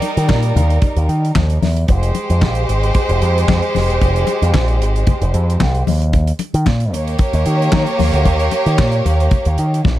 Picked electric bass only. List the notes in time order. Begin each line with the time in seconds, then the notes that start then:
0.17 D#3
0.29 A#2
0.56 D#2
0.96 D#2
1.09 D#3
1.36 D#2
1.62 E2
1.89 F1
2.30 F2
2.42 A#1
2.69 G#1
3.09 F1
3.22 F2
3.49 F2
3.75 F1
3.89 E1
4.01 F1
4.42 F2
4.55 A#1
4.81 G#1
5.22 F1
5.34 F2
5.61 C2
5.88 D#2
6.54 D#3
6.67 A#2
6.93 D#2
7.34 D#2
7.46 D#3
7.73 D#3
7.99 D#2
8.13 D2
8.26 D#2
8.66 D#3
8.79 A#2
9.05 D#2
9.46 D#2
9.59 D#3
9.85 A#1